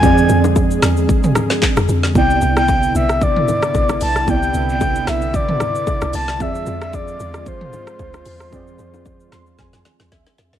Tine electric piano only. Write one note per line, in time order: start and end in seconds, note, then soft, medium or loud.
0.01 2.10 F3 medium
0.01 2.11 C4 medium
0.01 2.12 G#4 medium
0.05 2.13 D5 medium
2.14 4.23 C3 medium
2.14 4.24 B3 medium
2.14 4.24 E4 medium
2.18 4.25 D5 medium
4.26 6.35 C3 medium
4.26 6.36 B3 medium
4.26 6.37 E4 medium
4.30 6.38 D5 medium
6.38 8.48 F3 medium
6.38 8.48 C4 medium
6.38 8.49 G#4 medium
6.43 8.50 D5 medium
8.51 10.59 F3 medium
8.51 10.59 C4 medium
8.51 10.59 G#4 medium
8.55 10.59 D5 loud
9.33 9.57 C6 medium
9.59 10.08 G#5 medium
10.12 10.59 E5 medium